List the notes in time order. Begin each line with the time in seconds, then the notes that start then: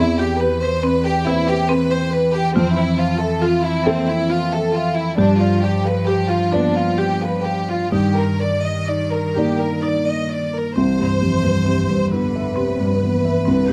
Already playing: E2 E3 C4 E4
0.19 G4
0.40 G4 B4
0.62 B4 C5
0.83 C4 B4
1.05 G4 B4
1.27 C4 E4 B4 E5
1.48 G4 B4
1.69 C4 B4
1.91 B4 C5
2.11 B4
2.33 G4
2.54 F2 C4 F4
2.76 E4 C5
2.98 F4 C5
3.20 A4 E5
3.42 F4
3.63 E4 E5
3.84 C4 A4 E5
4.07 E4 E5
4.30 F4
4.52 A4 E5
4.74 F4 E5
4.96 E4
5.17 G2 F3 D4 G4
5.39 F4 D5
5.61 G4 D5
5.85 B4 F5
6.07 G4
6.29 F4 F5
6.52 B3 D4 F4 B4 D5
6.76 F4 F5
6.98 G4
7.22 B4 F5
7.44 G4 F5
7.69 F4
7.92 G2 D#3 D#4 G4
8.16 A#4
8.40 A#4 D5
8.64 D5 D#5
8.88 D#4 D5
9.12 A#4 D5
9.35 A#3 D#4 G4 D5
9.59 A#4 D5
9.82 D#4 D5
10.06 D5 D#5
10.30 D5
10.56 A#4
10.76 C2 E3 C4 C5
10.98 G2 G4
11.21 F2 G4
11.44 G2 B4
11.66 C4 G4
11.89 G2 B4
12.12 D3 B3 E4 B4
12.34 B4 E5
12.56 C3 C4 G4
12.78 G2 B4
13.00 E3 B3 B4
13.25 E5
13.45 C2 D3 C4
13.68 G2 G4